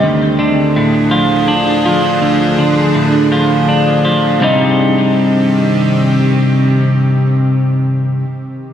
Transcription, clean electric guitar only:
X:1
M:6/8
L:1/8
Q:3/8=55
K:Cm
V:1 name="Clean electric guitar" clef=bass
D,, D, =A,, F, D F, | D,, D, =A,, F, D F, | [C,,G,,C,G,E]6- | [C,,G,,C,G,E]6 |]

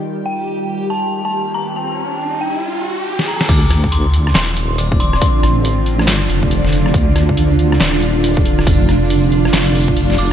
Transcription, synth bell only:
X:1
M:4/4
L:1/16
Q:"Swing 16ths" 1/4=139
K:Dphr
V:1 name="Synth bell"
z2 g6 a3 a3 b2 | a6 g6 z2 b2 | d'4 c'4 c'4 d'2 c'2- | c'6 z8 z2 |
z16 | z12 z2 d'2 |]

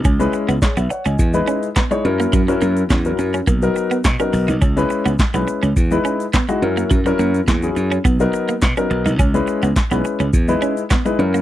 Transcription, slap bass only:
X:1
M:4/4
L:1/16
Q:1/4=105
K:C#dor
V:1 name="Slap bass" clef=bass
C,,2 z C,, z B,,, z C,, E,,2 z4 F,,2 | F,,2 F,,2 E,,2 F,,2 B,,,2 z2 B,, z B,,, B,,, | C,,2 z C,, z B,,, z C,, E,,2 z4 F,,2 | F,,2 F,,2 E,,2 F,,2 B,,,2 z2 B,, z B,,, B,,, |
C,,2 z C,, z B,,, z C,, E,,2 z4 F,,2 |]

